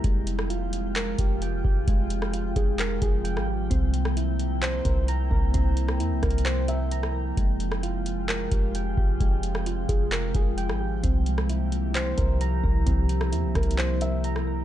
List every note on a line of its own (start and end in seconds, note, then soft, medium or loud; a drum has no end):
0.04 1.15 F1 loud
0.04 3.67 C3 medium
0.04 7.33 F3 medium
0.04 3.67 G#3 medium
0.04 1.42 G#3 medium
0.04 3.67 F4 medium
0.04 10.99 G5 medium
0.04 kick loud
0.04 closed hi-hat medium
0.27 closed hi-hat medium
0.39 cross-stick loud
0.50 1.87 F4 medium
0.50 closed hi-hat medium
0.73 closed hi-hat medium
0.96 1.39 A#4 medium
0.96 clap loud
0.96 closed hi-hat medium
1.19 1.63 F1 loud
1.19 1.63 G4 medium
1.19 kick medium
1.19 closed hi-hat medium
1.42 2.79 G5 medium
1.42 closed hi-hat medium
1.65 1.87 F1 loud
1.65 3.02 G4 medium
1.65 kick loud
1.88 2.54 F1 loud
1.88 3.25 G#3 medium
1.88 kick loud
1.88 closed hi-hat medium
2.10 closed hi-hat medium
2.22 cross-stick loud
2.33 3.71 F4 medium
2.33 closed hi-hat medium
2.56 3.00 F1 loud
2.56 2.78 G#4 medium
2.56 kick medium
2.56 closed hi-hat medium
2.79 3.01 A#4 medium
2.79 clap loud
2.79 closed hi-hat medium
3.02 3.38 F1 loud
3.02 3.71 G#4 medium
3.02 3.67 G#4 medium
3.02 kick medium
3.02 closed hi-hat medium
3.24 3.70 G5 loud
3.24 closed hi-hat medium
3.36 3.69 G#1 loud
3.36 cross-stick loud
3.48 3.71 G4 medium
3.70 4.81 C2 loud
3.70 14.64 C3 medium
3.70 7.34 A#3 medium
3.70 5.08 C4 loud
3.70 7.34 E4 medium
3.70 kick loud
3.70 closed hi-hat medium
3.94 closed hi-hat medium
4.05 cross-stick loud
4.17 5.54 E4 medium
4.17 closed hi-hat medium
4.39 closed hi-hat medium
4.62 5.05 C5 medium
4.62 clap loud
4.62 closed hi-hat medium
4.85 5.29 C2 loud
4.85 5.30 A#4 medium
4.85 kick medium
4.85 closed hi-hat medium
5.08 6.46 A#5 loud
5.08 closed hi-hat medium
5.31 5.53 C2 loud
5.31 6.68 A#4 medium
5.31 kick loud
5.54 6.01 C2 loud
5.54 6.91 C4 loud
5.54 kick loud
5.54 closed hi-hat medium
5.77 closed hi-hat medium
5.88 cross-stick loud
6.00 6.13 E2 loud
6.00 7.37 E4 medium
6.00 closed hi-hat medium
6.11 6.22 C2 loud
6.23 7.33 C2 loud
6.23 6.44 A#4 medium
6.23 kick medium
6.23 cross-stick medium
6.23 closed hi-hat soft
6.30 closed hi-hat medium
6.38 closed hi-hat medium
6.45 6.67 C5 loud
6.45 clap loud
6.45 closed hi-hat medium
6.68 7.13 A#4 medium
6.68 7.33 E5 medium
6.68 closed hi-hat medium
6.91 7.37 A#5 medium
6.91 closed hi-hat medium
7.03 cross-stick loud
7.14 7.37 A#4 medium
7.37 8.48 F1 loud
7.37 14.64 F3 medium
7.37 8.75 G#3 medium
7.37 11.00 G#3 medium
7.37 11.00 F4 medium
7.37 kick loud
7.37 closed hi-hat medium
7.60 closed hi-hat medium
7.72 cross-stick loud
7.83 9.20 F4 medium
7.83 closed hi-hat medium
8.06 closed hi-hat medium
8.28 8.72 A#4 medium
8.28 clap loud
8.28 closed hi-hat medium
8.52 8.96 F1 loud
8.52 8.97 G4 medium
8.52 kick medium
8.52 closed hi-hat medium
8.75 10.12 G5 medium
8.75 closed hi-hat medium
8.98 9.19 F1 loud
8.98 10.35 G4 medium
8.98 kick loud
9.20 9.86 F1 loud
9.20 10.58 G#3 medium
9.20 kick loud
9.20 closed hi-hat medium
9.43 closed hi-hat medium
9.55 cross-stick loud
9.66 11.04 F4 medium
9.66 closed hi-hat medium
9.89 10.33 F1 loud
9.89 10.11 G#4 medium
9.89 kick medium
9.89 closed hi-hat medium
10.12 10.34 A#4 medium
10.12 clap loud
10.12 closed hi-hat medium
10.35 10.71 F1 loud
10.35 11.04 G#4 medium
10.35 11.00 G#4 medium
10.35 kick medium
10.35 closed hi-hat medium
10.58 11.03 G5 loud
10.58 closed hi-hat medium
10.69 11.02 G#1 loud
10.69 cross-stick loud
10.81 11.04 G4 medium
11.03 12.14 C2 loud
11.03 14.64 A#3 medium
11.03 12.41 C4 loud
11.03 14.64 E4 medium
11.03 14.64 G4 medium
11.03 kick loud
11.03 closed hi-hat medium
11.26 closed hi-hat medium
11.38 cross-stick loud
11.49 12.87 E4 medium
11.49 closed hi-hat medium
11.72 closed hi-hat medium
11.95 12.38 C5 loud
11.95 clap loud
11.95 closed hi-hat medium
12.18 12.62 C2 loud
12.18 12.62 A#4 medium
12.18 kick medium
12.18 closed hi-hat medium
12.41 13.78 A#5 loud
12.41 closed hi-hat medium
12.63 12.86 C2 loud
12.63 14.00 A#4 medium
12.63 kick loud
12.87 13.34 C2 loud
12.87 14.24 C4 loud
12.87 kick loud
12.87 closed hi-hat medium
13.09 closed hi-hat medium
13.21 cross-stick loud
13.32 13.45 E2 loud
13.32 14.64 E4 medium
13.32 closed hi-hat medium
13.44 13.55 C2 loud
13.55 14.64 C2 loud
13.55 13.77 A#4 medium
13.55 kick medium
13.55 cross-stick medium
13.55 closed hi-hat soft
13.63 closed hi-hat medium
13.71 closed hi-hat medium
13.78 14.00 C5 loud
13.78 clap loud
13.78 closed hi-hat medium
14.01 14.46 A#4 medium
14.01 14.64 E5 medium
14.01 closed hi-hat medium
14.24 14.64 A#5 loud
14.24 closed hi-hat medium
14.36 cross-stick medium
14.47 14.64 A#4 medium